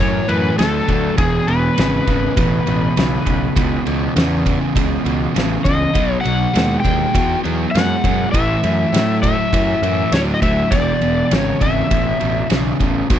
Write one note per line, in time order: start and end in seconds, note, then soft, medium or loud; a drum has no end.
0.00 0.20 F#2 medium
0.00 0.26 A2 medium
0.00 0.26 E3 medium
0.00 0.30 C#5 loud
0.28 0.50 F#2 medium
0.28 0.55 A2 medium
0.28 0.56 E3 medium
0.28 0.56 B4 medium
0.28 ride medium
0.58 0.79 D2 medium
0.58 0.85 A2 medium
0.58 0.85 F#3 loud
0.58 1.18 A4 medium
0.58 snare medium
0.58 ride medium
0.87 1.09 D2 medium
0.87 1.15 A2 medium
0.87 1.15 F#3 medium
0.87 kick medium
0.87 ride medium
1.17 1.39 E1 loud
1.17 1.45 E2 medium
1.17 1.45 B2 medium
1.17 1.49 G#4 medium
1.17 kick loud
1.17 ride medium
1.47 1.68 E1 medium
1.47 1.75 E2 medium
1.47 1.75 B2 medium
1.47 3.82 B4 medium
1.47 ride medium
1.77 1.98 G#1 medium
1.77 2.05 E2 medium
1.77 2.05 C#3 loud
1.77 snare loud
1.77 ride medium
2.07 2.28 G#1 medium
2.07 2.34 E2 medium
2.07 2.35 C#3 loud
2.07 kick medium
2.07 ride medium
2.36 2.58 A1 medium
2.36 2.64 E2 medium
2.36 2.64 B2 medium
2.36 kick medium
2.36 ride medium
2.66 2.87 A1 medium
2.66 2.93 E2 medium
2.66 2.94 B2 medium
2.66 ride medium
2.97 3.17 B1 medium
2.97 3.24 E2 medium
2.97 3.24 C#3 medium
2.97 snare loud
2.97 ride medium
3.26 3.47 B1 medium
3.26 3.53 E2 medium
3.26 3.53 C#3 medium
3.26 kick medium
3.26 ride medium
3.56 3.77 C#2 medium
3.56 3.83 E2 medium
3.56 3.83 B2 medium
3.56 kick loud
3.56 ride medium
3.86 4.07 C#2 medium
3.86 4.13 E2 medium
3.86 4.13 B2 medium
3.86 ride medium
4.16 4.43 E2 medium
4.16 4.57 E2 medium
4.16 4.43 C#3 loud
4.16 snare loud
4.16 ride medium
4.45 4.72 E2 medium
4.45 4.73 C#3 medium
4.45 kick medium
4.45 ride medium
4.75 4.96 C#2 medium
4.75 5.02 E2 medium
4.75 5.02 B2 medium
4.75 kick medium
4.75 ride medium
5.04 5.26 C#2 medium
5.04 5.32 E2 medium
5.04 5.32 B2 medium
5.04 ride medium
5.35 5.56 A1 medium
5.35 5.62 E2 medium
5.35 5.62 C#3 medium
5.35 snare loud
5.35 ride medium
5.64 5.85 C#2 medium
5.64 5.92 E2 medium
5.64 5.92 C#3 medium
5.64 6.20 D#5 medium
5.64 kick medium
5.64 ride medium
5.94 6.15 B1 loud
5.94 6.21 B2 medium
5.94 6.21 F#3 medium
5.94 kick loud
5.94 ride medium
6.21 6.51 B2 medium
6.21 6.51 F#3 medium
6.21 6.80 F#5 medium
6.25 6.45 B1 medium
6.25 ride medium
6.53 6.75 D#2 medium
6.53 6.81 B2 medium
6.53 6.81 G#3 medium
6.53 snare loud
6.53 ride medium
6.80 7.11 B2 medium
6.80 7.11 G#3 medium
6.80 7.38 G5 medium
6.85 7.05 D#2 medium
6.85 kick medium
6.85 ride medium
7.13 7.35 E2 medium
7.13 7.40 B2 medium
7.13 7.41 F#3 medium
7.13 kick medium
7.13 ride medium
7.43 7.65 E2 medium
7.43 7.70 B2 medium
7.43 7.71 F#3 medium
7.43 ride medium
7.71 7.95 F#2 medium
7.71 8.01 B2 medium
7.71 8.01 G#3 medium
7.71 8.28 F#5 loud
7.71 ride medium
7.77 snare loud
8.04 8.24 F#2 medium
8.04 8.31 B2 medium
8.04 8.31 G#3 medium
8.04 kick medium
8.04 ride medium
8.32 8.54 A1 medium
8.32 8.60 A2 medium
8.32 8.60 E3 medium
8.32 9.18 E5 medium
8.32 kick loud
8.32 ride medium
8.64 8.84 F#2 medium
8.64 8.90 A2 medium
8.64 8.90 E3 medium
8.64 ride medium
8.93 9.20 A2 medium
8.93 9.33 A2 medium
8.93 9.20 F#3 medium
8.93 snare loud
8.93 ride medium
9.22 9.49 A2 medium
9.22 9.50 F#3 medium
9.22 10.15 E5 loud
9.22 kick medium
9.22 ride medium
9.52 9.73 F#2 medium
9.52 9.79 A2 medium
9.52 9.79 E3 medium
9.52 kick medium
9.52 ride medium
9.82 10.02 F#2 medium
9.82 10.09 A2 medium
9.82 10.09 E3 medium
9.82 ride medium
10.12 10.32 D2 medium
10.12 10.39 A2 medium
10.12 10.39 F#3 medium
10.12 10.19 C#5 medium
10.12 snare medium
10.12 ride medium
10.34 10.41 D#5 medium
10.42 10.62 D2 medium
10.42 10.69 A2 medium
10.42 10.69 F#3 medium
10.42 10.73 E5 medium
10.42 kick medium
10.42 ride medium
10.71 10.92 E1 loud
10.71 10.99 E2 medium
10.71 10.99 B2 medium
10.71 11.34 D5 medium
10.71 kick loud
10.71 ride medium
11.01 11.21 E1 medium
11.01 11.28 E2 medium
11.01 11.29 B2 medium
11.01 ride medium
11.31 11.52 G#1 medium
11.31 11.58 E2 medium
11.31 11.58 C#3 loud
11.31 11.63 C#5 medium
11.31 snare loud
11.31 ride medium
11.61 11.82 G#1 medium
11.61 11.88 E2 medium
11.61 11.88 C#3 medium
11.61 12.47 E5 medium
11.61 kick medium
11.61 ride medium
11.90 12.11 A1 medium
11.90 12.17 E2 medium
11.90 12.18 B2 medium
11.90 kick medium
11.90 ride medium
12.20 12.42 A1 medium
12.20 12.47 E2 medium
12.20 12.48 B2 medium
12.20 ride medium
12.50 12.71 B1 medium
12.50 12.77 E2 medium
12.50 12.77 C#3 medium
12.50 snare loud
12.50 ride medium
12.79 13.01 A1 medium
12.79 13.07 E2 medium
12.79 13.07 C#3 medium
12.79 kick medium
12.79 ride medium
13.10 13.19 B1 medium
13.10 13.19 B2 medium
13.10 13.19 F#3 medium
13.10 kick loud
13.10 ride medium